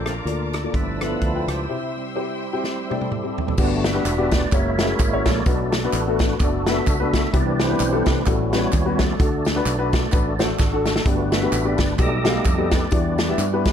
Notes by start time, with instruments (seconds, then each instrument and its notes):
Already playing: fingered electric bass A#1, grand piano A#2 A#3 F4 A4 D5, tonewheel organ D3 A3 C4, string section D5 A5 A#5 D6
0.06 tonewheel organ D4 F4 A#4, cross-stick, closed hi-hat
0.25 fingered electric bass D2, grand piano A#3 F4 A4 D5, closed hi-hat
0.53 tonewheel organ A4, cross-stick, closed hi-hat
0.63 grand piano A#3 F4 A4 D5
0.73 fingered electric bass G1, grand piano G2, tonewheel organ F3 A3 B3 D4 E4 G4, string section A5 B5 E6, kick, closed hi-hat
1.01 grand piano B3 F4 A4 E5, tonewheel organ D4 F4 B4, cross-stick, closed hi-hat
1.21 fingered electric bass D2, kick, closed hi-hat
1.35 grand piano B3 F4 A4 G5
1.48 fingered electric bass C#2, tonewheel organ E4 G4 C5, cross-stick, closed hi-hat
1.69 grand piano C3 C4 E4 G4 E5, string section E5 G5 C6
1.97 tonewheel organ G3 C4 E4
2.15 grand piano C4 E4 G4 C5
2.53 grand piano C4 E4 G4 G5
2.64 snare
2.90 grand piano C4 E4 G4 D5, tonewheel organ C4 E4 G4 A4, high tom
3.01 high tom
3.12 mid tom
3.23 grand piano C4 E4 G4 E5
3.38 floor tom
3.48 floor tom
3.58 fingered electric bass G1, grand piano G2 B3 D4 F#4 G4 D5, tonewheel organ A3 B3 D4 F#4 B4, kick, crash, tambourine
3.84 tonewheel organ B4 E5, snare, closed hi-hat, tambourine
3.95 grand piano B3 D4 F#4 G4 B4
4.05 fingered electric bass E1, clap, closed hi-hat, tambourine
4.18 grand piano B3 D4 F#4 G4 D5
4.31 kick, snare, closed hi-hat, tambourine
4.35 tonewheel organ D5
4.52 fingered electric bass F#1, tonewheel organ G#3 A#3 E4 A#4 C#5 E5, grand piano A#3 C#4 E4 F#4 C#5, kick, clap, closed hi-hat, tambourine
4.79 grand piano A#3 C#4 E4 F#4 G#4, snare, closed hi-hat, tambourine
4.99 fingered electric bass G#1, kick, clap, closed hi-hat, tambourine
5.13 grand piano A#3 C#4 E4 F#4 C#5
5.25 fingered electric bass A#1, tonewheel organ F#4 A4 D5, kick, snare, closed hi-hat, tambourine
5.46 fingered electric bass B1, grand piano B2 A3 B3 D4 F#4 B4, tonewheel organ F#3 A3 D4, kick, closed hi-hat, tambourine
5.72 snare, closed hi-hat, tambourine
5.84 grand piano A3 B3 D4 F#4 B4
5.93 fingered electric bass A1, tonewheel organ D4 F#4 B4, clap, closed hi-hat, tambourine
6.07 grand piano A3 B3 D4 F#4 A4
6.19 kick, snare, closed hi-hat, tambourine
6.40 fingered electric bass F#1, grand piano A3 B3 D4 F#4 D5, tonewheel organ D4 F#4 A4, kick, clap, closed hi-hat, tambourine
6.67 grand piano A3 B3 D4 F#4 B4, tonewheel organ A4 E5, snare, closed hi-hat, tambourine
6.87 fingered electric bass C#2, kick, clap, closed hi-hat, tambourine
7.00 grand piano A3 B3 D4 F#4 B4
7.13 kick, snare, closed hi-hat, tambourine
7.33 fingered electric bass C2, grand piano C3 G3 B3 C4 E4 B4, tonewheel organ E3 C4 D4 G4 B4 D5, kick, closed hi-hat, tambourine
7.60 tonewheel organ E4 G4 C5, snare, closed hi-hat, tambourine
7.69 grand piano G3 B3 C4 E4 B4
7.80 fingered electric bass B1, clap, closed hi-hat, tambourine
7.93 grand piano G3 B3 C4 E4 A4
8.06 fingered electric bass C2, tonewheel organ B4, kick, snare, closed hi-hat, tambourine
8.25 fingered electric bass A1, grand piano A2 G3 B3 C#4 F#4 A4, tonewheel organ G3 B3 C#4 E4 F#4 A4, kick, clap, closed hi-hat, tambourine
8.53 grand piano G3 B3 C#4 F#4 B4, tonewheel organ C#5, snare, closed hi-hat, tambourine
8.73 fingered electric bass D#2, tonewheel organ C#5, kick, clap, closed hi-hat, tambourine
8.86 grand piano G3 B3 C#4 F#4 B4
8.99 tonewheel organ F#4 A4 D5, kick, snare, closed hi-hat, tambourine
9.18 fingered electric bass D2, grand piano D3 D4 F#4 A4, tonewheel organ A3 D4 F#4, kick, closed hi-hat, tambourine
9.45 snare, closed hi-hat, tambourine
9.56 grand piano D4 F#4 B4
9.66 fingered electric bass B1, clap, closed hi-hat, tambourine
9.79 grand piano D4 F#4 B4
9.93 kick, snare, closed hi-hat, tambourine
10.12 fingered electric bass A1, grand piano D4 F#4 B4, kick, clap, closed hi-hat, tambourine
10.39 tonewheel organ A3 D4 F#4 A4, grand piano D4 F#4 C5, snare, closed hi-hat, tambourine
10.59 fingered electric bass G#1, kick, snare, clap, tambourine
10.73 grand piano D4 F#4 A4
10.86 snare, tambourine
10.96 snare
11.06 fingered electric bass G1, grand piano G2 B3 D4 F#4 G4 D5, tonewheel organ A3 B3 D4 F#4 B4, kick, closed hi-hat, tambourine
11.32 tonewheel organ B4 E5, snare, closed hi-hat, tambourine
11.42 grand piano B3 D4 F#4 G4 B4
11.52 fingered electric bass A1, clap, closed hi-hat, tambourine
11.65 grand piano B3 D4 F#4 G4 D5
11.78 fingered electric bass G1, tonewheel organ D5, kick, snare, closed hi-hat, tambourine
11.99 fingered electric bass B1, grand piano B2 B3 D#4 G4 A4 D5, tonewheel organ G3 A3 D#4 G4 A4 D#5, kick, clap, closed hi-hat, tambourine
12.25 grand piano B3 D#4 G4 A4 F5, snare, closed hi-hat, tambourine
12.45 fingered electric bass F2, kick, clap, closed hi-hat, tambourine
12.58 grand piano B3 D#4 G4 A4 D5
12.71 tonewheel organ G4 B4 D5, kick, snare, closed hi-hat, tambourine
12.91 fingered electric bass E2, grand piano E3 B3 D4 E4 G4 D5, tonewheel organ G3 D4 F#4, kick, closed hi-hat, tambourine
13.18 snare, closed hi-hat, tambourine
13.29 grand piano B3 D4 E4 G4 E5
13.38 fingered electric bass G2, tonewheel organ D4 G4 B4, clap, closed hi-hat, tambourine
13.53 grand piano B3 D4 E4 G4 B4
13.65 kick, snare, closed hi-hat, tambourine